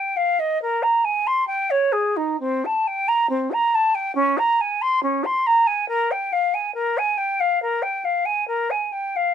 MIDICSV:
0, 0, Header, 1, 2, 480
1, 0, Start_track
1, 0, Tempo, 870827
1, 811, Tempo, 903614
1, 1295, Time_signature, 4, 2, 24, 8
1, 1771, Tempo, 867052
1, 4651, Tempo, 907716
1, 5107, End_track
2, 0, Start_track
2, 0, Title_t, "Flute"
2, 0, Program_c, 0, 73
2, 0, Note_on_c, 0, 79, 63
2, 92, Note_on_c, 0, 77, 57
2, 100, Note_off_c, 0, 79, 0
2, 218, Note_on_c, 0, 75, 61
2, 226, Note_off_c, 0, 77, 0
2, 337, Note_off_c, 0, 75, 0
2, 342, Note_on_c, 0, 70, 68
2, 457, Note_on_c, 0, 82, 63
2, 465, Note_off_c, 0, 70, 0
2, 577, Note_on_c, 0, 80, 58
2, 585, Note_off_c, 0, 82, 0
2, 700, Note_on_c, 0, 84, 64
2, 709, Note_off_c, 0, 80, 0
2, 809, Note_off_c, 0, 84, 0
2, 813, Note_on_c, 0, 79, 66
2, 935, Note_on_c, 0, 73, 58
2, 943, Note_off_c, 0, 79, 0
2, 1052, Note_on_c, 0, 68, 53
2, 1060, Note_off_c, 0, 73, 0
2, 1180, Note_on_c, 0, 63, 53
2, 1188, Note_off_c, 0, 68, 0
2, 1300, Note_off_c, 0, 63, 0
2, 1305, Note_on_c, 0, 60, 65
2, 1438, Note_on_c, 0, 81, 56
2, 1446, Note_off_c, 0, 60, 0
2, 1557, Note_on_c, 0, 79, 62
2, 1565, Note_off_c, 0, 81, 0
2, 1667, Note_on_c, 0, 82, 63
2, 1675, Note_off_c, 0, 79, 0
2, 1778, Note_off_c, 0, 82, 0
2, 1781, Note_on_c, 0, 60, 57
2, 1904, Note_on_c, 0, 82, 66
2, 1913, Note_off_c, 0, 60, 0
2, 2031, Note_on_c, 0, 81, 58
2, 2039, Note_off_c, 0, 82, 0
2, 2142, Note_on_c, 0, 79, 61
2, 2151, Note_off_c, 0, 81, 0
2, 2252, Note_off_c, 0, 79, 0
2, 2255, Note_on_c, 0, 61, 80
2, 2381, Note_on_c, 0, 82, 67
2, 2390, Note_off_c, 0, 61, 0
2, 2508, Note_on_c, 0, 80, 59
2, 2516, Note_off_c, 0, 82, 0
2, 2623, Note_on_c, 0, 84, 65
2, 2631, Note_off_c, 0, 80, 0
2, 2738, Note_off_c, 0, 84, 0
2, 2741, Note_on_c, 0, 61, 55
2, 2861, Note_on_c, 0, 84, 57
2, 2869, Note_off_c, 0, 61, 0
2, 2982, Note_on_c, 0, 82, 61
2, 2990, Note_off_c, 0, 84, 0
2, 3095, Note_on_c, 0, 80, 57
2, 3103, Note_off_c, 0, 82, 0
2, 3211, Note_off_c, 0, 80, 0
2, 3214, Note_on_c, 0, 70, 72
2, 3341, Note_on_c, 0, 79, 60
2, 3349, Note_off_c, 0, 70, 0
2, 3459, Note_on_c, 0, 77, 60
2, 3467, Note_off_c, 0, 79, 0
2, 3578, Note_on_c, 0, 80, 55
2, 3586, Note_off_c, 0, 77, 0
2, 3687, Note_off_c, 0, 80, 0
2, 3690, Note_on_c, 0, 70, 65
2, 3820, Note_on_c, 0, 80, 69
2, 3828, Note_off_c, 0, 70, 0
2, 3929, Note_on_c, 0, 79, 57
2, 3938, Note_off_c, 0, 80, 0
2, 4055, Note_on_c, 0, 77, 64
2, 4063, Note_off_c, 0, 79, 0
2, 4174, Note_off_c, 0, 77, 0
2, 4177, Note_on_c, 0, 70, 63
2, 4288, Note_on_c, 0, 79, 59
2, 4296, Note_off_c, 0, 70, 0
2, 4411, Note_on_c, 0, 77, 56
2, 4420, Note_off_c, 0, 79, 0
2, 4527, Note_on_c, 0, 80, 69
2, 4535, Note_off_c, 0, 77, 0
2, 4646, Note_off_c, 0, 80, 0
2, 4650, Note_on_c, 0, 70, 63
2, 4770, Note_on_c, 0, 80, 58
2, 4778, Note_off_c, 0, 70, 0
2, 4885, Note_on_c, 0, 79, 55
2, 4893, Note_off_c, 0, 80, 0
2, 5011, Note_on_c, 0, 77, 56
2, 5019, Note_off_c, 0, 79, 0
2, 5107, Note_off_c, 0, 77, 0
2, 5107, End_track
0, 0, End_of_file